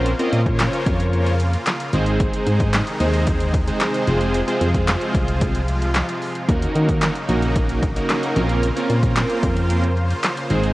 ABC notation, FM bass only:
X:1
M:4/4
L:1/8
Q:1/4=112
K:Bbm
V:1 name="FM bass" clef=bass
B,,, B,,2 F,,4 A,,,- | A,,, A,,2 E,,4 F,,,- | F,,, F,,2 C,,4- C,, | E,, E,2 B,,,4 B,,,- |
B,,, B,,2 F,,4 A,,, |]